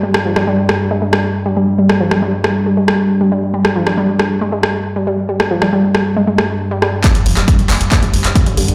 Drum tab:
HH |----------------|----------------|----------------|----------------|
CP |----------------|----------------|----------------|----------------|
SD |-r-r--r---r-----|-r-r--r---r-----|-r-r--r---r-----|-r-r--r---r---r-|
BD |----------------|----------------|----------------|----------------|

HH |xxoxxxoxxxoxxxox|
CP |x--x--x-x--x----|
SD |----------------|
BD |o---o---o---o---|